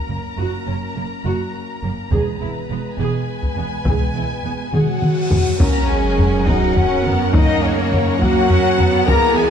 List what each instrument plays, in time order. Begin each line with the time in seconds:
Already playing: french horn section A#3 C#4, violin section A#4 A#5
0.09 double bass section F#1, cello section F#2, viola section A#3
0.38 double bass section F#1, cello section F#2, viola section F#4
0.66 double bass section F#1, cello section F#2, viola section C#4
0.95 double bass section F#1, cello section F#2, viola section A#3
1.24 double bass section F#1, cello section F#2, viola section F#4
1.83 double bass section F#1, cello section F#2, viola section A#3
2.11 double bass section E1, cello section E2, french horn section G#3 B3, viola section G#4, violin section B4, taiko
2.40 double bass section E1, cello section E2, viola section E4
2.70 double bass section E1, cello section E2, viola section B3
2.99 double bass section E1, cello section E2, viola section G#4, violin section G#5
3.42 taiko
3.56 double bass section E1, cello section E2, viola section B3
3.85 double bass section E1, cello section E2, viola section G#4, taiko, cymbal swell
4.14 double bass section E1, cello section E2, viola section E4
4.43 double bass section E1, cello section E2, viola section B3
4.71 double bass section E1, cello section E2, trombone section F#3, french horn section F#4, viola section G#4, flute section F#5, violin section F#5, taiko mid
5.02 taiko mid
5.30 double bass section E1, cello section E2, viola section B3, taiko low
5.59 double bass section F#2, trombone section A#3, cello section C#4, viola section C#4 A#4, french horn section A#4, violin section F#5 A#5, flute section A#5, taiko, sub drop
5.88 trombone section G#3, french horn section G#4, flute section G#5, violin section G#5
6.19 taiko low
6.46 trombone section F#3, cello section D#4, french horn section F#4, violin section F#5, flute section F#5, taiko
6.75 cello section C#4, taiko low
7.04 cello section B3, taiko low
7.33 trombone section D#3, cello section A#3, french horn section D#4, flute section D#5, violin section D#5, taiko
7.62 trombone section C#3, french horn section C#4, violin section C#5, flute section C#5
7.93 taiko low
8.20 trombone section F#3, cello section A#3, french horn section F#4, flute section F#5, violin section F#5, taiko
8.50 cello section C#4, taiko low
8.79 cello section B3, taiko low
9.06 double bass section E2, trombone section A#3, viola section E4 G#4, french horn section A#4, violin section G#5 A#5, flute section A#5, taiko
9.34 trombone section G#3, french horn section G#4, violin section G#5, flute section G#5